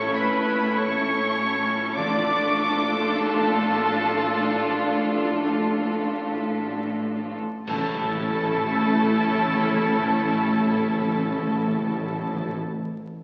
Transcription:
Already playing: double bass section A1, cello section A2, french horn section A3 C#4, viola section A3 C#4, violin section E4 A4 C#6, oboe C#5, clarinet C#5
0.17 clarinet B4, oboe B4, violin section B5
0.75 french horn section A3 C#4, clarinet C#5, oboe C#5, violin section C#6
1.37 french horn section F#3
1.95 double bass section A1, timpani A2, french horn section F3 D4, viola section A3 D4, violin section F4 A4 D6, oboe D5, clarinet D5
3.22 french horn section F3 D4, oboe A4, clarinet A4, violin section A5
7.67 double bass section A1, cello section A2, timpani A2, french horn section E3 C#4, viola section A3 C#4, violin section E4 A4 A5, oboe A4, clarinet A4, concert bass drum, crash
7.76 timpani A2
7.83 timpani A2
7.91 timpani A2
7.98 timpani A2
8.05 timpani A2
8.12 timpani A2
8.20 timpani A2
8.27 timpani A2
8.34 timpani A2
8.42 timpani A2
8.50 timpani A2
8.57 timpani A2
8.65 timpani A2
8.72 timpani A2
8.79 timpani A2
8.87 timpani A2
8.95 timpani A2
9.03 timpani A2
9.11 timpani A2
9.17 timpani A2
9.24 timpani A2
9.32 timpani A2
9.39 timpani A2
9.47 timpani A2
9.54 timpani A2
9.62 timpani A2
9.69 timpani A2
9.77 timpani A2
9.85 timpani A2
9.91 timpani A2
9.99 timpani A2
10.06 timpani A2
10.13 timpani A2
10.20 timpani A2
10.27 timpani A2
10.35 timpani A2
10.43 timpani A2
10.50 timpani A2
10.58 timpani A2
10.65 timpani A2
10.72 timpani A2
10.79 timpani A2
10.87 timpani A2
10.94 timpani A2
11.02 timpani A2
11.10 timpani A2
11.17 timpani A2
11.24 timpani A2
11.31 timpani A2
11.38 timpani A2
11.46 timpani A2
11.53 timpani A2
11.60 timpani A2
11.68 timpani A2
11.75 timpani A2
11.82 timpani A2
11.89 timpani A2
11.96 timpani A2
12.03 timpani A2
12.11 timpani A2
12.19 timpani A2
12.26 timpani A2
12.34 timpani A2
12.41 timpani A2
12.49 timpani A2

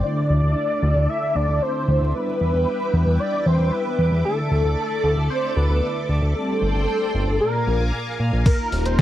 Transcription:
Already playing: string machine D5 D6
0.04 analog polysynth D3 A3 D4 E4 D5, string machine A4 E5, analog synth lead D5
0.30 analog synth bass D2
0.43 analog synth bass D2
0.83 analog synth bass D2
0.96 analog synth bass D2
1.09 analog synth lead E5
1.35 analog synth bass D2, analog synth lead D5
1.49 analog synth bass D2
1.62 analog synth lead C5
1.88 analog synth bass D2
2.01 analog synth bass D2
2.14 analog polysynth G3 D4 E4, string machine B4 G5 D6, analog synth lead B4
2.41 analog synth bass E2
2.54 analog synth bass E2
2.93 analog synth bass E2
3.07 analog synth bass E2
3.20 analog synth lead D5
3.46 analog synth bass E2, analog synth lead C5
3.59 analog synth bass E2
3.72 analog synth lead B4
3.99 analog synth bass E2
4.12 analog synth bass E2
4.25 analog polysynth D3 A3 D4 E4 D5, string machine A4 D5, analog synth lead A4
4.51 analog synth bass D2
4.64 analog synth bass D2
5.04 analog synth bass D2
5.17 analog synth bass D2
5.30 analog synth lead C5
5.56 analog synth bass D2, analog synth lead B4
5.70 analog synth bass D2
6.09 analog synth bass D2
6.22 analog synth bass D2
6.35 analog polysynth G3 C4 D4 G4 D5, analog synth lead A4, string machine C5 D5 G5
6.62 analog synth bass G1
6.75 analog synth bass G1
7.14 analog synth bass G1
7.28 analog synth bass G1
7.40 analog polysynth A#2 A#3 F4 D5, analog synth lead A#4, string machine A#4 F5 G#5 D6
7.67 analog synth bass A#1
7.80 analog synth bass A#1
8.20 analog synth bass A#2
8.33 analog synth bass A#1
8.46 string machine D#4 F4 A#4, analog synth lead A#4, kick, closed hi-hat, crash
8.72 analog synth bass D#1, open hi-hat
8.85 analog synth bass D#1, analog synth lead C5, closed hi-hat
8.99 kick, snare, closed hi-hat

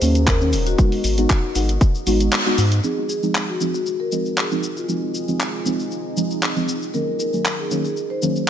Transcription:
Already playing: ambient pad C#4 D#4 F#4 A#4 D#5, marimba C5
0.01 analog synth bass D#2, synth stab D#3 F#3 A#3 C#4, open hi-hat, cabasa
0.15 closed hi-hat, cabasa
0.27 marimba A#4, kick, clap, closed hi-hat, cabasa
0.41 synth stab D#3 F#3 A#3 C#4, cabasa
0.53 analog synth bass D#1, open hi-hat, cabasa
0.67 marimba F#4, closed hi-hat, cabasa
0.78 synth stab G#3 B3 D#4 F#4, ambient pad B3 G#4 D#5, kick, closed hi-hat, cabasa
0.92 open hi-hat
1.04 analog synth bass G#1, open hi-hat, cabasa
1.18 synth stab G#3 B3 D#4 F#4, closed hi-hat, cabasa
1.30 kick, clap, closed hi-hat, cabasa
1.55 analog synth bass G#1, synth stab G#3 B3 D#4 F#4, open hi-hat, cabasa
1.69 closed hi-hat, cabasa
1.81 kick, closed hi-hat, cabasa
1.95 cabasa
2.07 analog synth bass G#1, synth stab G#3 B3 D#4 F#4, open hi-hat, cabasa
2.20 closed hi-hat, cabasa
2.32 clap, closed hi-hat, cabasa
2.46 synth stab G#3 B3 D#4 F#4, cabasa
2.58 analog synth bass G#2, open hi-hat, cabasa
2.72 closed hi-hat, cabasa
2.83 synth stab F3 G#3 C4 D#4, ambient pad C4 D#4 F4 G#4 D#5, marimba G#4, cabasa
3.09 marimba G#4, cabasa
3.23 synth stab F3 G#3 C4 D#4, cabasa
3.35 clap, cabasa
3.49 marimba F#4
3.60 synth stab F3 G#3 C4 D#4, cabasa
3.74 marimba F#4, cabasa
3.86 cabasa
4.00 marimba A#4
4.12 synth stab F3 G#3 C4 D#4, cabasa
4.26 cabasa
4.37 marimba G#4, clap, cabasa
4.51 synth stab F3 G#3 C4 D#4, cabasa
4.63 cabasa
4.77 marimba F4, cabasa
4.89 synth stab F3 G#3 C4 D#4, cabasa
5.14 cabasa
5.28 synth stab F3 G#3 C4 D#4, cabasa
5.40 clap, cabasa
5.66 synth stab F3 G#3 C4 D#4, cabasa
5.79 cabasa
5.91 cabasa
6.17 synth stab F3 G#3 C4 D#4, cabasa
6.31 cabasa
6.43 clap, cabasa
6.56 synth stab F3 G#3 C4 D#4, cabasa
6.68 cabasa
6.82 cabasa
6.94 synth stab D#3 F#3 A#3 C#4, ambient pad C#4 F#4 A#4, marimba A#4, cabasa
7.20 marimba A#4, cabasa
7.33 synth stab D#3 F#3 A#3 C#4, cabasa
7.45 clap, cabasa
7.59 marimba G#4
7.71 synth stab D#3 F#3 A#3 C#4, cabasa
7.85 marimba G#4, cabasa
7.97 cabasa
8.10 marimba C5
8.22 synth stab D#3 F#3 A#3 C#4, cabasa
8.36 cabasa

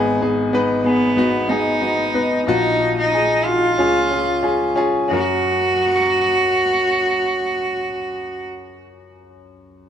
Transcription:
Already playing: grand piano G#1 G#2 B3 D#4 G#4
0.21 grand piano B3 D#4 G#4
0.53 grand piano B3 D#4 B4
0.84 grand piano B3 D#4 G#4, cello B3
1.17 grand piano B3 D#4 F#4
1.49 grand piano B3 D#4 G#4, cello D#4
1.82 grand piano B3 D#4 F#4
2.14 grand piano B3 D#4 B4
2.47 grand piano A#1 A#2 D#4 F4 F#4, cello D#4
2.80 grand piano D#4 F4 F#4
2.98 cello D#4
3.12 grand piano D#4 F4 G#4
3.45 grand piano D#4 F4 F#4, cello F4
3.78 grand piano C#2 C#3 C#4 F4 G#4
4.10 grand piano C#4 F4 G#4
4.42 grand piano C#4 F4 G#4
4.76 grand piano C#4 F4 G#4
5.08 grand piano F#2 C#4 F#4, cello F#4
5.13 grand piano A#4

